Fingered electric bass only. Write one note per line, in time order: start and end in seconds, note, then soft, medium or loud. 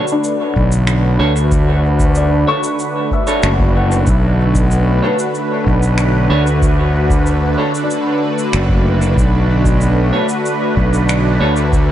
0.56 1.17 B1 medium
1.20 2.44 D2 medium
3.43 4.04 F#1 loud
4.07 5.00 B1 loud
5.67 6.27 B1 medium
6.30 7.55 D2 medium
8.54 9.15 F#1 loud
9.17 10.10 B1 loud
10.77 11.38 B1 medium
11.41 11.92 D2 medium